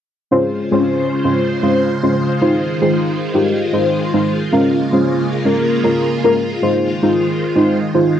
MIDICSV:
0, 0, Header, 1, 3, 480
1, 0, Start_track
1, 0, Key_signature, -4, "minor"
1, 0, Tempo, 526316
1, 285, Time_signature, 4, 2, 24, 8
1, 7477, End_track
2, 0, Start_track
2, 0, Title_t, "Synth stab"
2, 0, Program_c, 0, 62
2, 283, Note_on_c, 0, 56, 88
2, 284, Note_on_c, 0, 61, 79
2, 286, Note_on_c, 0, 65, 78
2, 288, Note_on_c, 0, 72, 98
2, 545, Note_off_c, 0, 56, 0
2, 546, Note_off_c, 0, 61, 0
2, 547, Note_off_c, 0, 65, 0
2, 548, Note_off_c, 0, 72, 0
2, 651, Note_on_c, 0, 56, 86
2, 653, Note_on_c, 0, 61, 79
2, 654, Note_on_c, 0, 65, 79
2, 657, Note_on_c, 0, 72, 96
2, 992, Note_off_c, 0, 56, 0
2, 993, Note_off_c, 0, 61, 0
2, 994, Note_off_c, 0, 65, 0
2, 995, Note_off_c, 0, 72, 0
2, 1131, Note_on_c, 0, 56, 82
2, 1133, Note_on_c, 0, 61, 77
2, 1134, Note_on_c, 0, 65, 79
2, 1135, Note_on_c, 0, 72, 90
2, 1390, Note_off_c, 0, 56, 0
2, 1391, Note_off_c, 0, 61, 0
2, 1392, Note_off_c, 0, 65, 0
2, 1393, Note_off_c, 0, 72, 0
2, 1483, Note_on_c, 0, 56, 85
2, 1484, Note_on_c, 0, 61, 76
2, 1486, Note_on_c, 0, 65, 76
2, 1488, Note_on_c, 0, 72, 92
2, 1745, Note_off_c, 0, 56, 0
2, 1746, Note_off_c, 0, 61, 0
2, 1747, Note_off_c, 0, 65, 0
2, 1748, Note_off_c, 0, 72, 0
2, 1851, Note_on_c, 0, 56, 87
2, 1853, Note_on_c, 0, 61, 80
2, 1854, Note_on_c, 0, 65, 80
2, 1856, Note_on_c, 0, 72, 91
2, 2111, Note_off_c, 0, 56, 0
2, 2112, Note_off_c, 0, 61, 0
2, 2112, Note_off_c, 0, 65, 0
2, 2113, Note_off_c, 0, 72, 0
2, 2202, Note_on_c, 0, 56, 86
2, 2204, Note_on_c, 0, 63, 81
2, 2205, Note_on_c, 0, 65, 83
2, 2207, Note_on_c, 0, 72, 97
2, 2465, Note_off_c, 0, 56, 0
2, 2466, Note_off_c, 0, 63, 0
2, 2467, Note_off_c, 0, 65, 0
2, 2468, Note_off_c, 0, 72, 0
2, 2570, Note_on_c, 0, 56, 86
2, 2572, Note_on_c, 0, 63, 77
2, 2573, Note_on_c, 0, 65, 77
2, 2575, Note_on_c, 0, 72, 92
2, 2912, Note_off_c, 0, 56, 0
2, 2912, Note_off_c, 0, 63, 0
2, 2913, Note_off_c, 0, 65, 0
2, 2914, Note_off_c, 0, 72, 0
2, 3049, Note_on_c, 0, 56, 84
2, 3051, Note_on_c, 0, 63, 77
2, 3052, Note_on_c, 0, 65, 77
2, 3053, Note_on_c, 0, 67, 94
2, 3309, Note_off_c, 0, 56, 0
2, 3310, Note_off_c, 0, 63, 0
2, 3311, Note_off_c, 0, 65, 0
2, 3312, Note_off_c, 0, 67, 0
2, 3401, Note_on_c, 0, 56, 84
2, 3403, Note_on_c, 0, 63, 74
2, 3404, Note_on_c, 0, 65, 77
2, 3406, Note_on_c, 0, 72, 91
2, 3664, Note_off_c, 0, 56, 0
2, 3665, Note_off_c, 0, 63, 0
2, 3666, Note_off_c, 0, 65, 0
2, 3667, Note_off_c, 0, 72, 0
2, 3769, Note_on_c, 0, 56, 84
2, 3770, Note_on_c, 0, 63, 81
2, 3772, Note_on_c, 0, 65, 77
2, 3773, Note_on_c, 0, 72, 95
2, 4029, Note_off_c, 0, 56, 0
2, 4030, Note_off_c, 0, 63, 0
2, 4031, Note_off_c, 0, 65, 0
2, 4032, Note_off_c, 0, 72, 0
2, 4122, Note_on_c, 0, 56, 87
2, 4123, Note_on_c, 0, 61, 82
2, 4125, Note_on_c, 0, 65, 81
2, 4126, Note_on_c, 0, 70, 97
2, 4385, Note_off_c, 0, 56, 0
2, 4385, Note_off_c, 0, 61, 0
2, 4386, Note_off_c, 0, 65, 0
2, 4387, Note_off_c, 0, 70, 0
2, 4489, Note_on_c, 0, 56, 89
2, 4491, Note_on_c, 0, 61, 79
2, 4492, Note_on_c, 0, 65, 75
2, 4494, Note_on_c, 0, 72, 94
2, 4831, Note_off_c, 0, 56, 0
2, 4832, Note_off_c, 0, 61, 0
2, 4833, Note_off_c, 0, 65, 0
2, 4833, Note_off_c, 0, 72, 0
2, 4969, Note_on_c, 0, 56, 84
2, 4971, Note_on_c, 0, 61, 77
2, 4972, Note_on_c, 0, 65, 75
2, 4975, Note_on_c, 0, 70, 91
2, 5230, Note_off_c, 0, 56, 0
2, 5230, Note_off_c, 0, 61, 0
2, 5231, Note_off_c, 0, 65, 0
2, 5232, Note_off_c, 0, 70, 0
2, 5321, Note_on_c, 0, 56, 83
2, 5323, Note_on_c, 0, 61, 77
2, 5324, Note_on_c, 0, 65, 76
2, 5326, Note_on_c, 0, 70, 92
2, 5584, Note_off_c, 0, 56, 0
2, 5585, Note_off_c, 0, 61, 0
2, 5586, Note_off_c, 0, 65, 0
2, 5587, Note_off_c, 0, 70, 0
2, 5689, Note_on_c, 0, 56, 88
2, 5690, Note_on_c, 0, 61, 78
2, 5692, Note_on_c, 0, 65, 81
2, 5693, Note_on_c, 0, 70, 96
2, 5950, Note_off_c, 0, 56, 0
2, 5950, Note_off_c, 0, 61, 0
2, 5951, Note_off_c, 0, 65, 0
2, 5952, Note_off_c, 0, 70, 0
2, 6042, Note_on_c, 0, 56, 88
2, 6043, Note_on_c, 0, 63, 76
2, 6045, Note_on_c, 0, 65, 81
2, 6046, Note_on_c, 0, 72, 100
2, 6305, Note_off_c, 0, 56, 0
2, 6305, Note_off_c, 0, 63, 0
2, 6306, Note_off_c, 0, 65, 0
2, 6307, Note_off_c, 0, 72, 0
2, 6408, Note_on_c, 0, 56, 84
2, 6410, Note_on_c, 0, 63, 80
2, 6411, Note_on_c, 0, 65, 80
2, 6413, Note_on_c, 0, 72, 92
2, 6751, Note_off_c, 0, 56, 0
2, 6751, Note_off_c, 0, 63, 0
2, 6752, Note_off_c, 0, 65, 0
2, 6753, Note_off_c, 0, 72, 0
2, 6890, Note_on_c, 0, 56, 83
2, 6891, Note_on_c, 0, 63, 77
2, 6893, Note_on_c, 0, 65, 77
2, 6894, Note_on_c, 0, 72, 93
2, 7150, Note_off_c, 0, 56, 0
2, 7150, Note_off_c, 0, 63, 0
2, 7151, Note_off_c, 0, 65, 0
2, 7152, Note_off_c, 0, 72, 0
2, 7242, Note_on_c, 0, 56, 84
2, 7243, Note_on_c, 0, 63, 75
2, 7245, Note_on_c, 0, 65, 78
2, 7246, Note_on_c, 0, 72, 89
2, 7477, Note_off_c, 0, 56, 0
2, 7477, Note_off_c, 0, 63, 0
2, 7477, Note_off_c, 0, 65, 0
2, 7477, Note_off_c, 0, 72, 0
2, 7477, End_track
3, 0, Start_track
3, 0, Title_t, "String machine"
3, 0, Program_c, 1, 50
3, 284, Note_on_c, 1, 49, 76
3, 285, Note_on_c, 1, 56, 72
3, 285, Note_on_c, 1, 65, 83
3, 286, Note_on_c, 1, 72, 69
3, 2186, Note_off_c, 1, 49, 0
3, 2205, Note_on_c, 1, 51, 76
3, 4089, Note_off_c, 1, 72, 0
3, 4106, Note_off_c, 1, 51, 0
3, 4126, Note_on_c, 1, 58, 68
3, 4127, Note_on_c, 1, 49, 81
3, 6009, Note_off_c, 1, 56, 0
3, 6026, Note_off_c, 1, 58, 0
3, 6027, Note_off_c, 1, 49, 0
3, 6046, Note_on_c, 1, 51, 75
3, 6046, Note_on_c, 1, 56, 71
3, 6046, Note_on_c, 1, 72, 68
3, 7477, Note_off_c, 1, 51, 0
3, 7477, Note_off_c, 1, 56, 0
3, 7477, Note_off_c, 1, 65, 0
3, 7477, Note_off_c, 1, 72, 0
3, 7477, End_track
0, 0, End_of_file